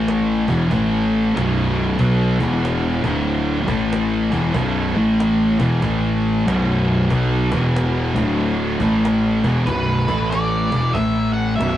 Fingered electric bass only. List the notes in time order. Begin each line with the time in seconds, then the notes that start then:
Already playing: A1
0.48 E1
0.71 A1
1.35 B0
1.99 B1
2.40 E1
3.04 D1
3.68 A1
4.32 E1
4.55 B0
4.96 A1
5.60 E1
5.82 A1
6.47 B0
7.10 B1
7.52 E1
8.16 D1
8.80 A1
9.44 E1
9.67 B0
10.08 A1
10.72 E1
10.95 A1
11.58 B0